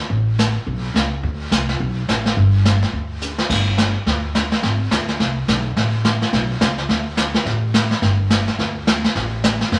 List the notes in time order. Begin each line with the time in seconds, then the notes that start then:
0.10 A1, brush sweep, kick
0.39 snare, hi-hat pedal
0.67 B1, brush sweep, kick
0.94 C#2, snare, hi-hat pedal
1.23 D2, brush sweep, kick
1.51 C2, snare, hi-hat pedal
1.69 snare
1.80 B1, brush sweep, kick
2.08 A1, snare, hi-hat pedal
2.26 snare
2.37 G1, brush sweep, kick
2.65 snare, hi-hat pedal
2.82 snare
2.93 D2, brush sweep, kick
3.22 hi-hat pedal
3.38 snare
3.50 G1, brush sweep, kick, snare, crash
3.78 kick, snare, hi-hat pedal
4.06 D2, brush sweep, kick, snare
4.35 kick, snare, hi-hat pedal
4.52 snare
4.63 G#1, brush sweep, kick, snare
4.91 D2, kick, snare, hi-hat pedal
5.08 snare
5.19 C2, brush sweep, kick, snare
5.48 B1, kick, snare, hi-hat pedal
5.76 A1, brush sweep, kick, snare
6.05 kick, snare, hi-hat pedal
6.22 snare
6.33 B1, brush sweep, kick, snare
6.61 C#2, kick, snare, hi-hat pedal
6.78 snare
6.89 D2, brush sweep, kick, snare
7.17 kick, snare, hi-hat pedal
7.34 snare
7.45 A1, brush sweep, kick, snare
7.74 kick, snare, hi-hat pedal
7.91 snare
8.02 G1, brush sweep, kick, snare
8.30 kick, snare, hi-hat pedal
8.47 snare
8.59 D2, brush sweep, kick, snare
8.87 kick, snare, hi-hat pedal
9.04 snare
9.15 A1, brush sweep, kick, snare
9.44 kick, snare, hi-hat pedal
9.61 snare
9.72 E1, brush sweep, kick, snare